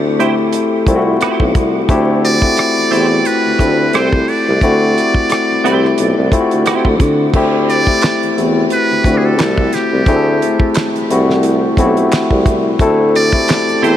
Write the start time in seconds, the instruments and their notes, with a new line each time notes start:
Already playing: tuba D2, tine electric piano A3 C4 E4 F#4 A4
0.19 tine electric piano A3 C4 E4 G4, clean electric guitar C4 E4 G4 C5, closed hi-hat
0.53 closed hi-hat
0.87 tuba C2, tine electric piano A3 C4 E4 F4, kick, closed hi-hat
0.96 tine electric piano F#4
1.21 clean electric guitar C4 E4 G4 C5, cross-stick, closed hi-hat
1.40 tuba B1, kick
1.55 tuba C2, kick, closed hi-hat
1.89 tuba D2, tine electric piano A3 C4 E4 G4, kick, closed hi-hat
2.25 muted trumpet D5, closed hi-hat
2.42 tine electric piano A3 C4 E4 F#4, kick
2.57 muted clean electric guitar stroke, cross-stick, closed hi-hat
2.78 tuba E2, closed hi-hat
2.91 tuba E2, tine electric piano A3 C4 E4 F#4, clean electric guitar C4 E4 G4 C5, closed hi-hat
3.00 tine electric piano G4
3.25 muted trumpet B4, closed hi-hat
3.46 tuba D2
3.59 tuba D2, tine electric piano A3 C4 E4 A4, kick, closed hi-hat
3.93 tuba C2, clean electric guitar C4 E4 G4 C5, muted trumpet C5, cross-stick, closed hi-hat
4.13 kick
4.28 muted trumpet D5, open hi-hat
4.48 tuba C2
4.61 tuba D2, tine electric piano A3 C4 E4 F#4, kick, closed hi-hat
4.98 closed hi-hat
5.14 kick
5.29 muted clean electric guitar stroke, cross-stick, closed hi-hat
5.51 tuba C2
5.64 tuba C2, tine electric piano A3 C4 E4 G4, clean electric guitar C4 E4 G4 C5, closed hi-hat
5.85 cross-stick
5.98 tuba B1, closed hi-hat
6.18 tuba C2
6.32 tine electric piano A3 C4 E4 F4, kick, closed hi-hat
6.41 tine electric piano F#4
6.51 tuba D2, closed hi-hat
6.66 tuba D2, clean electric guitar C4 E4 G4 C5, cross-stick, closed hi-hat
6.85 tuba D2, kick
7.00 tuba D3, kick, cross-stick, closed hi-hat
7.33 tuba D2, tine electric piano A3 C4 E4 G4, kick, crash
7.70 muted trumpet D5, closed hi-hat
7.87 tine electric piano A3 C4 E4 G4, kick
8.02 snare, clap, closed hi-hat
8.23 tuba E2, closed hi-hat
8.37 tuba E2, tine electric piano A3 C4 E4 F#4, closed hi-hat
8.70 muted trumpet B4, closed hi-hat
8.91 tuba D2
9.04 tuba D2, tine electric piano A3 C4 E4 F#4, kick, closed hi-hat
9.14 tine electric piano G4, muted trumpet G#4
9.25 muted trumpet A4
9.39 tuba C2, snare, clap, closed hi-hat
9.58 kick
9.73 muted trumpet G4, snare, closed hi-hat
9.93 tuba C2
10.06 tuba D2, tine electric piano A3 C4 E4 G#4, kick, closed hi-hat
10.16 tine electric piano A4
10.42 closed hi-hat
10.60 kick
10.74 snare, clap, closed hi-hat
10.96 tuba C2, closed hi-hat
11.10 tuba C2, tine electric piano A3 C4 E4 F#4, closed hi-hat
11.30 snare
11.43 closed hi-hat
11.77 tuba B1, tine electric piano A3 C4 E4 F#4, kick, closed hi-hat
11.87 tine electric piano G4
11.97 closed hi-hat
12.12 snare, clap, closed hi-hat
12.31 tuba C2, kick
12.46 tuba C2, kick, closed hi-hat
12.79 tuba D2, tine electric piano A3 C4 E4 A4, kick, closed hi-hat
13.15 muted trumpet D5, closed hi-hat
13.33 tine electric piano A3 C4 E4 G4, kick
13.48 muted clean electric guitar stroke, snare, clap, closed hi-hat
13.68 tuba E2, closed hi-hat
13.82 tuba E2, tine electric piano A3 C4 E4 A4, clean electric guitar C4 E4 G4 C5, muted trumpet C5, closed hi-hat